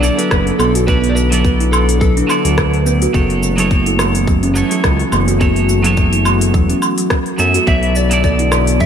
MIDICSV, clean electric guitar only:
0, 0, Header, 1, 2, 480
1, 0, Start_track
1, 0, Key_signature, 2, "minor"
1, 0, Tempo, 566038
1, 745, Time_signature, 4, 2, 24, 8
1, 7512, End_track
2, 0, Start_track
2, 0, Title_t, "Clean electric guitar"
2, 0, Program_c, 0, 27
2, 5, Note_on_c, 0, 54, 90
2, 13, Note_on_c, 0, 59, 84
2, 22, Note_on_c, 0, 64, 89
2, 29, Note_on_c, 0, 69, 87
2, 39, Note_on_c, 0, 74, 102
2, 709, Note_off_c, 0, 54, 0
2, 713, Note_off_c, 0, 59, 0
2, 718, Note_off_c, 0, 64, 0
2, 721, Note_off_c, 0, 69, 0
2, 726, Note_off_c, 0, 74, 0
2, 737, Note_on_c, 0, 54, 75
2, 743, Note_on_c, 0, 59, 64
2, 746, Note_on_c, 0, 64, 68
2, 751, Note_on_c, 0, 69, 63
2, 755, Note_on_c, 0, 74, 78
2, 1082, Note_off_c, 0, 54, 0
2, 1085, Note_off_c, 0, 59, 0
2, 1086, Note_off_c, 0, 64, 0
2, 1089, Note_off_c, 0, 69, 0
2, 1091, Note_off_c, 0, 74, 0
2, 1102, Note_on_c, 0, 54, 87
2, 1111, Note_on_c, 0, 59, 84
2, 1118, Note_on_c, 0, 64, 79
2, 1127, Note_on_c, 0, 69, 82
2, 1136, Note_on_c, 0, 74, 92
2, 1911, Note_off_c, 0, 54, 0
2, 1916, Note_off_c, 0, 59, 0
2, 1919, Note_off_c, 0, 64, 0
2, 1924, Note_off_c, 0, 69, 0
2, 1925, Note_on_c, 0, 54, 99
2, 1928, Note_off_c, 0, 74, 0
2, 1935, Note_on_c, 0, 59, 86
2, 1943, Note_on_c, 0, 64, 89
2, 1950, Note_on_c, 0, 69, 88
2, 1961, Note_on_c, 0, 74, 101
2, 2629, Note_off_c, 0, 54, 0
2, 2634, Note_off_c, 0, 59, 0
2, 2638, Note_off_c, 0, 64, 0
2, 2642, Note_off_c, 0, 69, 0
2, 2647, Note_off_c, 0, 74, 0
2, 2654, Note_on_c, 0, 54, 72
2, 2657, Note_on_c, 0, 59, 68
2, 2665, Note_on_c, 0, 64, 56
2, 2667, Note_on_c, 0, 69, 64
2, 2671, Note_on_c, 0, 73, 77
2, 3000, Note_off_c, 0, 54, 0
2, 3002, Note_off_c, 0, 59, 0
2, 3004, Note_off_c, 0, 64, 0
2, 3007, Note_off_c, 0, 69, 0
2, 3009, Note_off_c, 0, 73, 0
2, 3017, Note_on_c, 0, 54, 83
2, 3025, Note_on_c, 0, 59, 81
2, 3034, Note_on_c, 0, 64, 79
2, 3043, Note_on_c, 0, 69, 80
2, 3051, Note_on_c, 0, 73, 97
2, 3829, Note_off_c, 0, 54, 0
2, 3833, Note_off_c, 0, 59, 0
2, 3837, Note_off_c, 0, 64, 0
2, 3842, Note_off_c, 0, 69, 0
2, 3846, Note_off_c, 0, 73, 0
2, 3848, Note_on_c, 0, 54, 88
2, 3857, Note_on_c, 0, 59, 83
2, 3865, Note_on_c, 0, 64, 90
2, 3872, Note_on_c, 0, 69, 90
2, 3882, Note_on_c, 0, 73, 106
2, 4551, Note_off_c, 0, 54, 0
2, 4555, Note_off_c, 0, 59, 0
2, 4559, Note_off_c, 0, 64, 0
2, 4563, Note_off_c, 0, 69, 0
2, 4568, Note_off_c, 0, 73, 0
2, 4575, Note_on_c, 0, 54, 67
2, 4583, Note_on_c, 0, 59, 61
2, 4585, Note_on_c, 0, 64, 63
2, 4590, Note_on_c, 0, 69, 61
2, 4594, Note_on_c, 0, 73, 83
2, 4922, Note_off_c, 0, 54, 0
2, 4923, Note_off_c, 0, 59, 0
2, 4926, Note_off_c, 0, 64, 0
2, 4928, Note_off_c, 0, 69, 0
2, 4930, Note_off_c, 0, 73, 0
2, 4941, Note_on_c, 0, 54, 85
2, 4948, Note_on_c, 0, 59, 81
2, 4957, Note_on_c, 0, 64, 80
2, 4965, Note_on_c, 0, 69, 82
2, 4973, Note_on_c, 0, 73, 93
2, 5751, Note_off_c, 0, 54, 0
2, 5754, Note_off_c, 0, 59, 0
2, 5759, Note_off_c, 0, 64, 0
2, 5763, Note_off_c, 0, 69, 0
2, 5767, Note_off_c, 0, 73, 0
2, 6257, Note_on_c, 0, 54, 66
2, 6259, Note_on_c, 0, 59, 68
2, 6267, Note_on_c, 0, 64, 53
2, 6268, Note_on_c, 0, 69, 64
2, 6273, Note_on_c, 0, 76, 82
2, 6469, Note_off_c, 0, 54, 0
2, 6471, Note_off_c, 0, 59, 0
2, 6472, Note_off_c, 0, 64, 0
2, 6474, Note_off_c, 0, 69, 0
2, 6477, Note_off_c, 0, 76, 0
2, 6497, Note_on_c, 0, 54, 71
2, 6501, Note_on_c, 0, 59, 63
2, 6506, Note_on_c, 0, 64, 65
2, 6510, Note_on_c, 0, 69, 59
2, 6515, Note_on_c, 0, 74, 69
2, 6842, Note_off_c, 0, 54, 0
2, 6844, Note_off_c, 0, 59, 0
2, 6846, Note_off_c, 0, 64, 0
2, 6849, Note_off_c, 0, 69, 0
2, 6850, Note_off_c, 0, 74, 0
2, 6864, Note_on_c, 0, 54, 85
2, 6872, Note_on_c, 0, 59, 85
2, 6881, Note_on_c, 0, 64, 77
2, 6889, Note_on_c, 0, 69, 77
2, 6898, Note_on_c, 0, 74, 99
2, 7512, Note_off_c, 0, 54, 0
2, 7512, Note_off_c, 0, 59, 0
2, 7512, Note_off_c, 0, 64, 0
2, 7512, Note_off_c, 0, 69, 0
2, 7512, Note_off_c, 0, 74, 0
2, 7512, End_track
0, 0, End_of_file